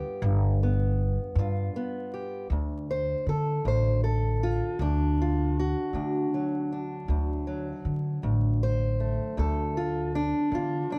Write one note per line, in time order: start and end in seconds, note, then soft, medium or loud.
0.00 0.22 G2 medium
0.00 0.61 B3 medium
0.00 1.38 F4 medium
0.00 2.12 G4 soft
0.22 1.15 G1 loud
0.22 1.37 G2 medium
0.63 1.75 B3 medium
1.35 1.67 G2 medium
1.35 2.47 G2 medium
1.35 2.47 F4 medium
1.76 2.47 B3 medium
2.14 2.47 G4 medium
2.50 3.13 D2 medium
2.50 3.65 D2 medium
2.91 3.28 C5 medium
3.26 3.58 D3 medium
3.26 3.66 A4 medium
3.65 4.59 A1 medium
3.65 4.80 D2 medium
3.65 4.03 C5 medium
4.04 4.80 A4 medium
4.43 4.80 F4 medium
4.79 5.73 D2 loud
4.79 5.93 D2 medium
4.79 5.94 D4 medium
5.21 5.58 F4 medium
5.59 7.87 F#4 medium
5.93 7.08 D2 medium
5.93 6.25 D3 medium
5.93 6.71 D4 soft
6.34 7.46 F#3 soft
6.72 8.62 D4 soft
7.08 7.71 D2 medium
7.08 8.22 D2 medium
7.47 10.99 F#3 soft
7.85 8.16 D3 medium
8.23 9.17 A1 medium
8.23 9.36 D2 medium
8.63 9.38 C5 medium
9.00 9.76 A3 soft
9.37 10.52 D2 medium
9.37 10.31 D2 medium
9.37 10.14 A4 medium
9.77 10.14 F4 medium
10.15 10.91 D4 medium
10.52 10.90 E2 medium
10.52 10.83 D3 medium
10.52 10.91 F4 medium
10.90 10.99 F#2 medium
10.90 10.99 D4 medium